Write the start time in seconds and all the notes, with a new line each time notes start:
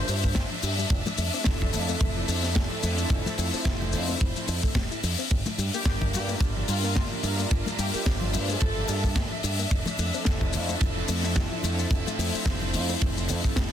Already playing: D4 C5 E5
0.08 G2 G3, open hi-hat, shaker
0.23 A#3, kick, shaker
0.35 G1 D3, kick, snare, ride, high conga, shaker
0.51 F3
0.62 G2 G3, open hi-hat, shaker
0.78 G3, shaker
0.90 F1 E3, kick, ride, shaker
1.06 F3, high bongo, high conga, low conga, shaker
1.18 F2 A3, open hi-hat, shaker
1.32 F3 A3 C4 E4 A4, high bongo, shaker
1.44 F1 E3, kick, snare, ride, shaker
1.60 F3, kick, low conga, shaker
1.73 F2 A3, open hi-hat, shaker
1.89 C4, high bongo, high conga, shaker
2.00 F1 E3, kick, ride, shaker
2.15 F3 A3 C4 E4 A4
2.27 F2 F3 A3 C4 E4 A4, open hi-hat, shaker
2.43 C4, snare, shaker
2.55 F1 E3, kick, snare, ride, high conga, shaker
2.71 F3
2.82 F2 F3 A3 C4 E4 A4, open hi-hat, low conga, shaker
2.98 A3, shaker
3.10 F1 E3, kick, ride, shaker
3.26 F3, high bongo, high conga, low conga, shaker
3.38 F2 A3, open hi-hat, shaker
3.52 F3 A3 C4 E4 C5, muted fingered electric bass stroke, high bongo, shaker
3.65 F1 E3, kick, snare, ride, shaker
3.81 F3, low conga, shaker
3.93 F2 A3, open hi-hat, shaker
4.08 C4, high conga, shaker
4.21 F1 E3, kick, ride, shaker
4.36 F3 A3 C4 E4 A4, shaker
4.48 F2 E4, open hi-hat, shaker
4.63 A3, kick, shaker
4.75 F1 E3, kick, snare, ride, high conga, shaker
4.91 E4, shaker
5.03 F2 F3, open hi-hat, shaker
5.19 C4, shaker
5.31 G1 D3 D4 E5, kick, ride, shaker
5.46 F3, high bongo, high conga, low conga, shaker
5.58 G2 G3, open hi-hat, shaker
5.72 G3 A#3 D4 F4 G4 A#4, high bongo, shaker
5.85 G1 D3 G4, kick, snare, ride, shaker
6.01 F3, kick, low conga, shaker
6.13 G2 G3 G4, open hi-hat, shaker
6.28 A#3, high bongo, high conga, shaker
6.40 G1 D3, kick, ride, shaker
6.56 F3 G3 A#3 D4 F4 A#4
6.68 G2 G3 A#3 D4 F4 A#4, open hi-hat, shaker
6.83 A#3 F4, snare, shaker
6.96 G1 D3, kick, snare, ride, high conga, shaker
7.12 F3
7.22 G2 G3 A#3 D4 F4 A#4, open hi-hat, low conga, shaker
7.39 A#3, shaker
7.51 G1 D3, kick, ride, shaker
7.66 F3, high bongo, high conga, low conga, shaker
7.78 G2 G3 G4, open hi-hat, shaker
7.93 G3 A#3 D4 F4 G4 C5, muted fingered electric bass stroke, high bongo, shaker
8.06 G1 D3, kick, snare, ride, shaker
8.21 F3, low conga, shaker
8.34 G2 G3, open hi-hat, shaker
8.48 A#3 A4, high conga, shaker
8.60 G1 D3, kick, ride, shaker
8.76 F3 G3 A#3 D4 F4 A#4
8.88 G2 G3, open hi-hat, shaker
9.04 A#3, kick, shaker
9.15 G1 D3, kick, snare, ride, high conga, shaker
9.31 F3
9.43 G2 G3, open hi-hat, shaker
9.59 A#3, shaker
9.71 F1 E3, kick, ride, shaker
9.86 F3, high bongo, high conga, low conga, shaker
9.87 shaker
9.97 F2 A3, shaker
9.99 open hi-hat, shaker
10.13 F3 A3 C4 E4 A4, high bongo, shaker
10.25 F1 E3, kick, snare, ride, shaker
10.41 F3, kick, low conga, shaker
10.53 F2 A3, open hi-hat, shaker
10.69 C4, high bongo, high conga, shaker
10.81 F1 E3, kick, ride, shaker
10.96 F3 A3 C4 E4 A4
11.08 F2 F3 A3 C4 E4 A4, open hi-hat, shaker
11.23 C4, snare, shaker
11.36 F1 E3, kick, snare, ride, high conga, shaker
11.52 F3
11.63 F2 F3 A3 C4 E4 A4, open hi-hat, low conga, shaker
11.79 C4, shaker
11.91 F1 E3, kick, ride, shaker
12.06 F3, high bongo, high conga, low conga, shaker
12.19 F2 A3, open hi-hat, shaker
12.33 F3 A3 C4 E4 C5, muted fingered electric bass stroke, high bongo, shaker
12.46 F1 E3, kick, snare, ride, shaker
12.61 F3, low conga, shaker
12.74 F2 A3, open hi-hat, shaker
12.89 C4, high bongo, high conga, shaker
13.01 F1 E3, kick, ride, shaker
13.16 F3 A3 C4 E4 A4, shaker
13.28 F2 C4, open hi-hat, shaker
13.44 F3 A3 C4 E4 A4, kick, shaker
13.56 F1 C4, kick, snare, ride, high conga, shaker